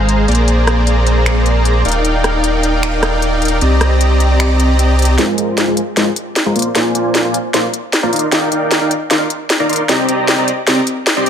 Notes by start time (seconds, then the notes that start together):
Already playing: G#1 G#3 G#4 C5 F5 A#5
0.09 closed hi-hat
0.28 A#1 A#3 G#4 C5 D5 A#5, closed hi-hat
0.32 closed hi-hat
0.35 closed hi-hat
0.48 closed hi-hat
0.67 cross-stick, closed hi-hat
0.87 closed hi-hat
1.07 closed hi-hat
1.26 finger snap, closed hi-hat
1.46 closed hi-hat
1.65 closed hi-hat
1.85 D#1 D#4 A#4 D5 F5 G5, closed hi-hat
1.88 closed hi-hat
1.92 closed hi-hat
2.05 closed hi-hat
2.24 cross-stick, closed hi-hat
2.44 closed hi-hat
2.63 closed hi-hat
2.83 finger snap, closed hi-hat
3.03 cross-stick, closed hi-hat
3.22 closed hi-hat
3.42 closed hi-hat
3.45 closed hi-hat
3.48 closed hi-hat
3.61 C2 C4 G4 D5 D#5 A#5, closed hi-hat
3.81 cross-stick, closed hi-hat
4.01 closed hi-hat
4.20 closed hi-hat
4.40 finger snap, closed hi-hat
4.60 closed hi-hat
4.79 closed hi-hat
4.99 closed hi-hat
5.02 closed hi-hat
5.05 closed hi-hat
5.18 G#3 F4 A#4 C5, snare, closed hi-hat
5.38 G#3 F4 A#4 C5 G#5, closed hi-hat
5.58 snare, closed hi-hat
5.68 G#3 F4 A#4 C5 G#5
5.77 closed hi-hat
5.97 G#3 F4 A#4 C5 C6, snare, closed hi-hat
6.16 closed hi-hat
6.36 snare, closed hi-hat
6.46 G#3 F4 A#4 C5 A#5
6.55 A#3 F4 C5 D5 C6, closed hi-hat
6.59 closed hi-hat
6.62 closed hi-hat
6.75 A#3 F4 C5 D5 G#5, snare, closed hi-hat
6.95 A#3 F4 C5 D5 G#5, closed hi-hat
7.15 snare, closed hi-hat
7.25 A#3 F4 C5 D5 G#5
7.34 closed hi-hat
7.54 A#3 F4 C5 D5 C6, snare, closed hi-hat
7.74 closed hi-hat
7.93 snare, closed hi-hat
8.03 A#3 F4 C5 D5 A#5
8.12 D#4 A#4 D5 F5 C6, closed hi-hat
8.16 closed hi-hat
8.19 closed hi-hat
8.32 D#4 A#4 D5 F5 G5, snare, closed hi-hat
8.52 D#4 A#4 D5 F5 G5, closed hi-hat
8.71 snare, closed hi-hat
8.82 D#4 A#4 D5 F5 G5
8.91 closed hi-hat
9.10 D#4 A#4 D5 F5 C6, snare, closed hi-hat
9.30 closed hi-hat
9.50 snare, closed hi-hat
9.60 D#4 A#4 D5 F5 A#5
9.69 D#4 A#4 D5 F5 C6, closed hi-hat
9.73 closed hi-hat
9.76 closed hi-hat
9.89 C4 G4 D5 D#5 A#5, snare, closed hi-hat
10.09 C4 G4 D5 D#5 A#5, closed hi-hat
10.28 snare, closed hi-hat
10.38 C4 G4 D5 D#5 A#5
10.48 closed hi-hat
10.67 C4 G4 D5 D#5 A#5, snare, closed hi-hat
10.87 closed hi-hat
11.07 snare, closed hi-hat
11.17 C4 G4 D5 D#5 C6
11.26 C4 G4 D5 D#5 A#5, closed hi-hat